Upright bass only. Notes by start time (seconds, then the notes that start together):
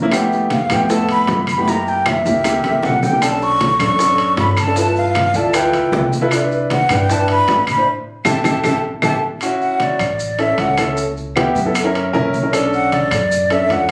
Already playing: F2
0.70 F2
1.29 F#2
2.25 C#2
2.64 C#2
2.83 B1
3.79 F#2
4.37 G2
5.34 D2
5.73 C#2
5.92 C2
6.90 G2
7.47 A2
8.25 A1
8.44 A1
8.64 A1
9.03 A1
10.00 A1
10.58 C#2
11.55 F#2
12.14 B1
13.11 F#2
13.69 E2